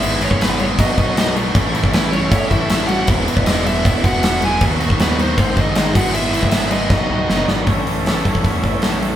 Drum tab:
CC |x-x-x-x-x-x-x-x-|x-x-x-x-x-x-x-x-|x-x-x-x-x-x-x-x-|x-x-x-x-x-x-x-x-|
HH |----------------|----------------|----------------|----------------|
SD |----o-------o---|----o-------o---|----o-------o---|----o-------o---|
BD |---o----o-o-----|o--o----o-o-----|o--o----o-o-----|o--o----o-o---o-|

CC |x-x-x-x---------|----------------|
HH |----------------|o-o-o-o-o-o-o-o-|
SD |----o---o---o-o-|----o-------o---|
BD |---o----o-------|o-----ooo-o-----|